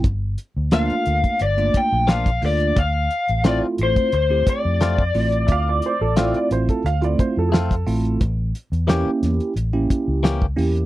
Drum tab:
HH |x-x-xxxxxxx-xxox|x-xxx-xxx-x-x-ox|x-x-xxxxxxx-xxox|x-xxx-xxx-x-x-ox|
SD |----o-------o---|----o-------o---|----o-------o---|----o-o-----o---|
BD |o------o--o--o--|o------o--o--o--|o------o--o--o--|o---------o--o--|